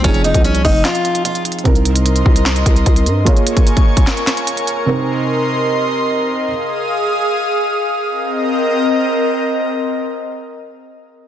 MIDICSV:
0, 0, Header, 1, 6, 480
1, 0, Start_track
1, 0, Tempo, 402685
1, 50, Time_signature, 4, 2, 24, 8
1, 13442, End_track
2, 0, Start_track
2, 0, Title_t, "Analog synth pad"
2, 0, Program_c, 0, 89
2, 1972, Note_on_c, 0, 75, 80
2, 1973, Note_on_c, 0, 70, 84
2, 1973, Note_on_c, 0, 84, 94
2, 3872, Note_off_c, 0, 70, 0
2, 3872, Note_off_c, 0, 75, 0
2, 3872, Note_off_c, 0, 84, 0
2, 3890, Note_on_c, 0, 70, 82
2, 3891, Note_on_c, 0, 80, 76
2, 3892, Note_on_c, 0, 85, 92
2, 5792, Note_off_c, 0, 80, 0
2, 5792, Note_off_c, 0, 85, 0
2, 5810, Note_on_c, 0, 75, 79
2, 5810, Note_on_c, 0, 84, 95
2, 7692, Note_off_c, 0, 70, 0
2, 7711, Note_off_c, 0, 75, 0
2, 7711, Note_off_c, 0, 84, 0
2, 7732, Note_on_c, 0, 68, 82
2, 7732, Note_on_c, 0, 77, 78
2, 7733, Note_on_c, 0, 87, 96
2, 9632, Note_off_c, 0, 68, 0
2, 9632, Note_off_c, 0, 77, 0
2, 9633, Note_off_c, 0, 87, 0
2, 9653, Note_on_c, 0, 75, 94
2, 9654, Note_on_c, 0, 60, 84
2, 9654, Note_on_c, 0, 70, 77
2, 13206, Note_off_c, 0, 75, 0
2, 13207, Note_off_c, 0, 60, 0
2, 13207, Note_off_c, 0, 70, 0
2, 13442, End_track
3, 0, Start_track
3, 0, Title_t, "Felt piano"
3, 0, Program_c, 1, 0
3, 0, Control_c, 1, 64, 127
3, 32, Note_on_c, 1, 53, 65
3, 46, Note_on_c, 1, 60, 65
3, 58, Note_on_c, 1, 63, 60
3, 63, Control_c, 1, 64, 0
3, 72, Note_on_c, 1, 68, 76
3, 286, Control_c, 1, 64, 127
3, 1923, Note_off_c, 1, 53, 0
3, 1930, Note_off_c, 1, 60, 0
3, 1936, Note_off_c, 1, 63, 0
3, 1943, Note_off_c, 1, 68, 0
3, 1952, Note_on_c, 1, 48, 65
3, 1964, Note_on_c, 1, 60, 58
3, 1977, Note_on_c, 1, 63, 56
3, 1987, Control_c, 1, 64, 0
3, 1991, Note_on_c, 1, 70, 77
3, 2222, Control_c, 1, 64, 127
3, 3843, Note_off_c, 1, 48, 0
3, 3849, Note_off_c, 1, 60, 0
3, 3856, Note_off_c, 1, 63, 0
3, 3862, Note_off_c, 1, 70, 0
3, 3874, Note_on_c, 1, 58, 66
3, 3888, Note_on_c, 1, 65, 62
3, 3901, Note_on_c, 1, 68, 57
3, 3904, Control_c, 1, 64, 0
3, 3913, Note_on_c, 1, 73, 73
3, 4151, Control_c, 1, 64, 127
3, 5764, Note_off_c, 1, 58, 0
3, 5771, Note_off_c, 1, 65, 0
3, 5777, Note_off_c, 1, 68, 0
3, 5784, Note_off_c, 1, 73, 0
3, 5792, Note_on_c, 1, 48, 65
3, 5805, Note_on_c, 1, 60, 61
3, 5818, Note_on_c, 1, 63, 59
3, 5824, Control_c, 1, 64, 0
3, 5831, Note_on_c, 1, 70, 73
3, 6059, Control_c, 1, 64, 127
3, 7683, Note_off_c, 1, 48, 0
3, 7689, Note_off_c, 1, 60, 0
3, 7696, Note_off_c, 1, 63, 0
3, 7703, Note_off_c, 1, 70, 0
3, 7744, Control_c, 1, 64, 0
3, 13442, End_track
4, 0, Start_track
4, 0, Title_t, "Steel-string acoustic guitar"
4, 0, Program_c, 2, 25
4, 50, Note_on_c, 2, 61, 108
4, 255, Note_off_c, 2, 61, 0
4, 290, Note_on_c, 2, 63, 78
4, 495, Note_off_c, 2, 63, 0
4, 531, Note_on_c, 2, 61, 84
4, 736, Note_off_c, 2, 61, 0
4, 771, Note_on_c, 2, 63, 87
4, 976, Note_off_c, 2, 63, 0
4, 1009, Note_on_c, 2, 65, 83
4, 1461, Note_off_c, 2, 65, 0
4, 1490, Note_on_c, 2, 65, 69
4, 1695, Note_off_c, 2, 65, 0
4, 13442, End_track
5, 0, Start_track
5, 0, Title_t, "808-style bass"
5, 0, Program_c, 3, 38
5, 51, Note_on_c, 3, 29, 113
5, 396, Note_off_c, 3, 29, 0
5, 410, Note_on_c, 3, 36, 100
5, 756, Note_off_c, 3, 36, 0
5, 770, Note_on_c, 3, 29, 105
5, 1001, Note_off_c, 3, 29, 0
5, 1970, Note_on_c, 3, 36, 111
5, 2662, Note_off_c, 3, 36, 0
5, 2691, Note_on_c, 3, 36, 106
5, 3152, Note_off_c, 3, 36, 0
5, 3170, Note_on_c, 3, 36, 107
5, 3401, Note_off_c, 3, 36, 0
5, 3412, Note_on_c, 3, 36, 110
5, 3651, Note_on_c, 3, 43, 98
5, 3668, Note_off_c, 3, 36, 0
5, 3879, Note_off_c, 3, 43, 0
5, 13442, End_track
6, 0, Start_track
6, 0, Title_t, "Drums"
6, 50, Note_on_c, 9, 42, 83
6, 51, Note_on_c, 9, 36, 122
6, 169, Note_off_c, 9, 42, 0
6, 170, Note_off_c, 9, 36, 0
6, 170, Note_on_c, 9, 42, 56
6, 289, Note_off_c, 9, 42, 0
6, 291, Note_on_c, 9, 42, 72
6, 410, Note_off_c, 9, 42, 0
6, 410, Note_on_c, 9, 36, 89
6, 411, Note_on_c, 9, 42, 64
6, 530, Note_off_c, 9, 36, 0
6, 530, Note_off_c, 9, 42, 0
6, 531, Note_on_c, 9, 42, 86
6, 650, Note_off_c, 9, 42, 0
6, 650, Note_on_c, 9, 42, 56
6, 770, Note_off_c, 9, 42, 0
6, 771, Note_on_c, 9, 36, 97
6, 771, Note_on_c, 9, 46, 83
6, 890, Note_off_c, 9, 36, 0
6, 890, Note_off_c, 9, 46, 0
6, 1010, Note_on_c, 9, 42, 79
6, 1011, Note_on_c, 9, 38, 117
6, 1011, Note_on_c, 9, 39, 94
6, 1129, Note_off_c, 9, 42, 0
6, 1130, Note_off_c, 9, 38, 0
6, 1130, Note_off_c, 9, 39, 0
6, 1130, Note_on_c, 9, 42, 68
6, 1249, Note_off_c, 9, 42, 0
6, 1250, Note_on_c, 9, 42, 74
6, 1369, Note_off_c, 9, 42, 0
6, 1370, Note_on_c, 9, 42, 61
6, 1489, Note_off_c, 9, 42, 0
6, 1491, Note_on_c, 9, 42, 78
6, 1610, Note_off_c, 9, 42, 0
6, 1611, Note_on_c, 9, 42, 52
6, 1730, Note_off_c, 9, 42, 0
6, 1730, Note_on_c, 9, 42, 69
6, 1810, Note_off_c, 9, 42, 0
6, 1810, Note_on_c, 9, 42, 55
6, 1890, Note_off_c, 9, 42, 0
6, 1890, Note_on_c, 9, 42, 44
6, 1970, Note_off_c, 9, 42, 0
6, 1970, Note_on_c, 9, 42, 84
6, 1971, Note_on_c, 9, 36, 120
6, 2090, Note_off_c, 9, 36, 0
6, 2090, Note_off_c, 9, 42, 0
6, 2091, Note_on_c, 9, 42, 56
6, 2210, Note_off_c, 9, 42, 0
6, 2210, Note_on_c, 9, 42, 78
6, 2330, Note_off_c, 9, 42, 0
6, 2331, Note_on_c, 9, 42, 66
6, 2450, Note_off_c, 9, 42, 0
6, 2451, Note_on_c, 9, 42, 82
6, 2570, Note_off_c, 9, 42, 0
6, 2571, Note_on_c, 9, 42, 57
6, 2690, Note_off_c, 9, 42, 0
6, 2691, Note_on_c, 9, 36, 94
6, 2810, Note_off_c, 9, 36, 0
6, 2811, Note_on_c, 9, 42, 74
6, 2931, Note_off_c, 9, 42, 0
6, 2931, Note_on_c, 9, 42, 77
6, 2933, Note_on_c, 9, 38, 117
6, 2933, Note_on_c, 9, 39, 93
6, 3051, Note_off_c, 9, 42, 0
6, 3051, Note_on_c, 9, 42, 70
6, 3052, Note_off_c, 9, 38, 0
6, 3052, Note_off_c, 9, 39, 0
6, 3170, Note_on_c, 9, 36, 84
6, 3171, Note_off_c, 9, 42, 0
6, 3172, Note_on_c, 9, 42, 70
6, 3289, Note_off_c, 9, 36, 0
6, 3291, Note_off_c, 9, 42, 0
6, 3292, Note_on_c, 9, 42, 62
6, 3411, Note_off_c, 9, 42, 0
6, 3411, Note_on_c, 9, 42, 76
6, 3412, Note_on_c, 9, 36, 84
6, 3530, Note_off_c, 9, 42, 0
6, 3532, Note_off_c, 9, 36, 0
6, 3532, Note_on_c, 9, 42, 50
6, 3651, Note_off_c, 9, 42, 0
6, 3652, Note_on_c, 9, 42, 68
6, 3771, Note_off_c, 9, 42, 0
6, 3891, Note_on_c, 9, 42, 86
6, 3892, Note_on_c, 9, 36, 123
6, 4011, Note_off_c, 9, 36, 0
6, 4011, Note_off_c, 9, 42, 0
6, 4012, Note_on_c, 9, 42, 55
6, 4131, Note_off_c, 9, 42, 0
6, 4131, Note_on_c, 9, 42, 81
6, 4251, Note_off_c, 9, 42, 0
6, 4251, Note_on_c, 9, 36, 92
6, 4251, Note_on_c, 9, 42, 65
6, 4370, Note_off_c, 9, 36, 0
6, 4370, Note_off_c, 9, 42, 0
6, 4371, Note_on_c, 9, 42, 87
6, 4490, Note_off_c, 9, 42, 0
6, 4490, Note_on_c, 9, 36, 96
6, 4491, Note_on_c, 9, 42, 54
6, 4610, Note_off_c, 9, 36, 0
6, 4610, Note_off_c, 9, 42, 0
6, 4730, Note_on_c, 9, 36, 102
6, 4731, Note_on_c, 9, 42, 77
6, 4849, Note_off_c, 9, 36, 0
6, 4850, Note_off_c, 9, 42, 0
6, 4852, Note_on_c, 9, 42, 77
6, 4853, Note_on_c, 9, 38, 113
6, 4853, Note_on_c, 9, 39, 93
6, 4971, Note_off_c, 9, 42, 0
6, 4972, Note_off_c, 9, 38, 0
6, 4972, Note_off_c, 9, 39, 0
6, 4972, Note_on_c, 9, 42, 66
6, 5091, Note_off_c, 9, 42, 0
6, 5092, Note_on_c, 9, 38, 89
6, 5092, Note_on_c, 9, 39, 68
6, 5092, Note_on_c, 9, 42, 71
6, 5211, Note_off_c, 9, 38, 0
6, 5211, Note_off_c, 9, 39, 0
6, 5211, Note_off_c, 9, 42, 0
6, 5211, Note_on_c, 9, 42, 61
6, 5330, Note_off_c, 9, 42, 0
6, 5331, Note_on_c, 9, 42, 79
6, 5450, Note_off_c, 9, 42, 0
6, 5451, Note_on_c, 9, 42, 49
6, 5570, Note_off_c, 9, 42, 0
6, 5571, Note_on_c, 9, 42, 68
6, 5690, Note_off_c, 9, 42, 0
6, 13442, End_track
0, 0, End_of_file